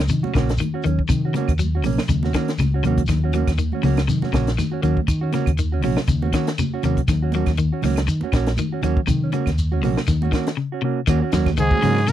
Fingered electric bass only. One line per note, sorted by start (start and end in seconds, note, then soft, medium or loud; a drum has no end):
0.10 0.23 D#3 medium
0.24 muted fingered electric bass stroke soft
0.35 0.58 A#1 medium
0.85 0.98 D#2 medium
1.10 1.33 D#3 loud
1.49 1.85 D#2 medium
1.85 1.97 A#1 medium
2.09 2.32 D#2 medium
2.59 2.82 C#2 medium
2.85 3.07 D#2 medium
3.09 3.45 D#2 medium
3.48 3.71 D#2 medium
3.84 4.07 C#2 medium
4.09 4.21 D#3 medium
4.22 muted fingered electric bass stroke soft
4.33 4.57 A#1 medium
4.83 4.96 D#2 medium
5.08 5.31 D#3 loud
5.47 5.83 D#2 medium
5.83 5.96 A#1 medium
6.08 6.31 D#2 medium
6.84 6.96 D#2 medium
7.08 7.44 D#2 medium
7.47 7.70 D#2 medium
7.83 8.06 C#2 medium
8.08 8.21 D#3 medium
8.22 muted fingered electric bass stroke soft
8.33 8.56 A#1 medium
8.83 8.96 D#2 medium
9.08 9.31 D#3 loud
9.47 9.83 D#2 medium
9.83 9.96 A#1 medium
10.08 10.31 D#2 medium
11.08 11.20 D#2 loud
11.33 11.56 D#2 medium
11.58 11.71 C#2 loud
11.84 12.12 G#2 medium